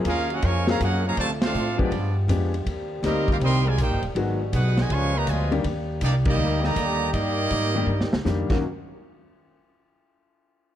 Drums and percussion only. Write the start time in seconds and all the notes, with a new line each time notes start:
0.05 kick, hi-hat pedal, ride
0.30 ride
0.42 kick, ride
0.67 snare
0.80 kick, hi-hat pedal, ride
1.17 kick, ride
1.42 snare, ride
1.54 hi-hat pedal
1.79 kick
1.92 kick, ride
2.29 kick, hi-hat pedal, ride
2.54 ride
2.66 kick, ride
3.03 kick, snare, hi-hat pedal, ride
3.28 kick, ride
3.41 kick, ride
3.78 kick, hi-hat pedal, ride
4.03 ride
4.16 kick, ride
4.53 kick, hi-hat pedal, ride
4.77 snare, ride
4.90 kick, ride
5.27 kick, hi-hat pedal, ride
5.52 ride
5.64 kick, ride
6.01 kick, hi-hat pedal, ride
6.25 kick, crash
6.64 snare
6.76 kick, hi-hat pedal, ride
7.13 kick, ride
7.50 kick, hi-hat pedal, ride
8.01 snare
8.13 snare
8.26 snare, hi-hat pedal
8.50 kick, snare, crash